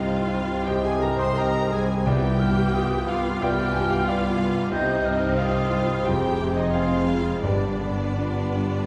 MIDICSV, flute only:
0, 0, Header, 1, 2, 480
1, 0, Start_track
1, 0, Key_signature, -3, "minor"
1, 0, Tempo, 689655
1, 1434, Time_signature, 4, 2, 24, 8
1, 2381, Tempo, 644468
1, 3341, Tempo, 674916
1, 4781, Tempo, 728155
1, 6183, End_track
2, 0, Start_track
2, 0, Title_t, "Flute"
2, 0, Program_c, 0, 73
2, 460, Note_on_c, 0, 87, 67
2, 1406, Note_off_c, 0, 87, 0
2, 1431, Note_on_c, 0, 86, 65
2, 1667, Note_on_c, 0, 89, 64
2, 1677, Note_off_c, 0, 86, 0
2, 1910, Note_on_c, 0, 87, 65
2, 1921, Note_off_c, 0, 89, 0
2, 2159, Note_on_c, 0, 86, 64
2, 2169, Note_off_c, 0, 87, 0
2, 2382, Note_on_c, 0, 89, 77
2, 2394, Note_off_c, 0, 86, 0
2, 2880, Note_on_c, 0, 86, 66
2, 2891, Note_off_c, 0, 89, 0
2, 3342, Note_off_c, 0, 86, 0
2, 3347, Note_on_c, 0, 91, 75
2, 3584, Note_on_c, 0, 89, 65
2, 3595, Note_off_c, 0, 91, 0
2, 3825, Note_on_c, 0, 87, 70
2, 3836, Note_off_c, 0, 89, 0
2, 4305, Note_off_c, 0, 87, 0
2, 4309, Note_on_c, 0, 84, 64
2, 4775, Note_off_c, 0, 84, 0
2, 4787, Note_on_c, 0, 84, 56
2, 5076, Note_off_c, 0, 84, 0
2, 5250, Note_on_c, 0, 83, 53
2, 6183, Note_off_c, 0, 83, 0
2, 6183, End_track
0, 0, End_of_file